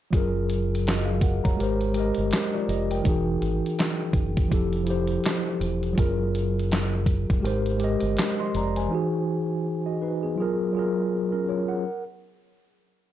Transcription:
0.11 F#1 F#3 F4, kick, closed hi-hat
0.15 G#4 A#4
0.50 closed hi-hat
0.75 closed hi-hat
0.87 F#4 D#5, snare, clap, closed hi-hat
1.05 G#4 F5
1.21 A#4 F#5, kick, closed hi-hat
1.44 F1 C#5 A#5, kick, closed hi-hat
1.57 G#1 G#3 G4, closed hi-hat
1.61 A#4 C5
1.81 closed hi-hat
1.93 G#3 G4, closed hi-hat
1.98 A#4 D#5
2.15 G1, closed hi-hat
2.31 snare, clap, closed hi-hat
2.54 F4 D5
2.68 F1 G4 D#5, closed hi-hat
2.91 A#4 G5, closed hi-hat
3.02 E1 E3 D#4, kick
3.06 F#4 G#4, closed hi-hat
3.41 G#1, closed hi-hat
3.66 closed hi-hat
3.79 snare, clap, closed hi-hat
4.13 F#1, kick, closed hi-hat
4.37 kick, closed hi-hat
4.48 F1 F3 E4, kick
4.52 G4 A4, closed hi-hat
4.73 closed hi-hat
4.83 F3 E4, closed hi-hat
4.89 G4 C5
5.07 closed hi-hat
5.24 snare, clap, closed hi-hat
5.60 E1, closed hi-hat
5.83 closed hi-hat
5.93 F#3 F4
5.97 F#1 G#4 A#4, kick, closed hi-hat
6.35 closed hi-hat
6.59 closed hi-hat
6.71 snare, clap, closed hi-hat
7.06 kick, closed hi-hat
7.30 F1, kick, closed hi-hat
7.40 G#1 G#3 G4
7.44 A#4 C5, closed hi-hat
7.66 closed hi-hat
7.77 G#3 G4, closed hi-hat
7.82 A#4 D#5
8.00 G1, closed hi-hat
8.17 snare, clap, closed hi-hat
8.40 D#5 C6
8.55 F1 D5 A#5, closed hi-hat
8.76 C5 G#5, closed hi-hat
8.88 E3 D#4
8.93 F#4 G#4
9.86 F#4 D#5
10.02 D#4 B4
10.23 B3 G#4
10.36 F#3 F4
10.40 G#4 A#4
10.72 F#3 F4
10.77 G#4 A#4
11.32 C#4 A#4
11.49 F4 C#5
11.68 A#4 F#5

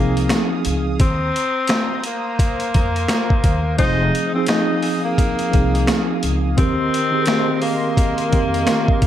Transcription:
Already playing: C2 F3 A#3 C4 D#4 G#4 F5 D#6
0.17 closed hi-hat
0.29 snare, closed hi-hat
0.65 C#2, closed hi-hat
1.00 D#2 C4 C5 A#5, kick, closed hi-hat
1.36 closed hi-hat
1.67 snare, closed hi-hat
2.04 A#3, closed hi-hat
2.39 kick, closed hi-hat
2.60 closed hi-hat
2.74 F2, kick, closed hi-hat
2.96 closed hi-hat
3.08 snare, closed hi-hat
3.30 kick
3.44 D#2, kick, closed hi-hat
3.77 F1 F3 C4 D#4 F4 G#4 C5 F5 D#6, kick, closed hi-hat
3.82 G#4
4.15 closed hi-hat
4.33 F3 C4 D#4
4.38 G#4
4.47 D#4, snare, closed hi-hat
4.83 open hi-hat
5.05 A#3
5.18 kick, closed hi-hat
5.39 closed hi-hat
5.50 C2 F3 C4 D#4, kick, closed hi-hat
5.55 G#4
5.75 closed hi-hat
5.87 snare, closed hi-hat
6.23 C#2, closed hi-hat
6.55 D#2 D#3 C4 G4 A#4 D#5 C6, kick, closed hi-hat
6.60 A#4
6.94 closed hi-hat
7.11 D#3 C4 G4
7.16 G#4
7.22 A#4, closed hi-hat
7.27 snare
7.62 A#3, open hi-hat
7.97 kick, closed hi-hat
8.18 closed hi-hat
8.30 F2 D#3 C4 G4, kick, closed hi-hat
8.35 A#4
8.54 closed hi-hat
8.67 snare, closed hi-hat
8.88 kick
9.02 D#2, kick, closed hi-hat

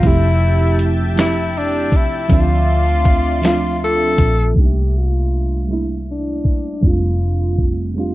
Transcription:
Already playing: F3
0.02 F1 F3 G3 C4 E4 E5 G5 A5, kick, closed hi-hat
0.07 A3 E4 G4
0.79 closed hi-hat
1.15 F3 A3 C4 E4, snare, closed hi-hat
1.20 E4 G4
1.58 D4
1.92 C2, kick, closed hi-hat
1.96 E4
2.28 D2 F3 A3 C4 D4 F4 D5 C6, kick, closed hi-hat
2.33 F4 E5
3.05 kick, closed hi-hat
3.42 F3 A3 C4 D4 F4, snare, closed hi-hat
3.46 F4
3.84 A4
4.18 A#1, kick, closed hi-hat
4.54 C2 G3 A3 A#3 D4, kick
4.59 D#4 G4
4.66 E5
4.98 F4
5.32 closed hi-hat
5.68 G3 A3 A#3 D4, finger snap, closed hi-hat
5.73 E4
6.11 D4
6.45 G1, kick, closed hi-hat
6.81 F1 G3 G#3 C4 D4, kick, closed hi-hat
6.86 A3 F4
7.58 kick, closed hi-hat
7.94 G3 A3 C4 D4, finger snap, closed hi-hat
7.99 F4 G4

